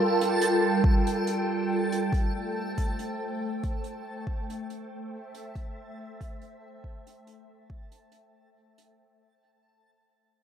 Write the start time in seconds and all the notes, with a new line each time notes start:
Already playing: G3 F4 A4 A#4 G5 A5
0.21 closed hi-hat
0.41 closed hi-hat
0.84 kick
1.07 closed hi-hat
1.27 closed hi-hat
1.92 closed hi-hat
2.12 A3, kick, closed hi-hat
2.49 C5
2.78 kick, closed hi-hat
2.99 closed hi-hat
3.63 kick, closed hi-hat
3.84 closed hi-hat
4.27 kick
4.50 closed hi-hat
4.70 closed hi-hat
4.87 E5
5.34 closed hi-hat
5.55 kick, closed hi-hat
6.21 kick, closed hi-hat
6.41 closed hi-hat
6.84 kick
7.07 closed hi-hat
7.27 closed hi-hat
7.70 kick
7.92 closed hi-hat
8.12 closed hi-hat
8.78 closed hi-hat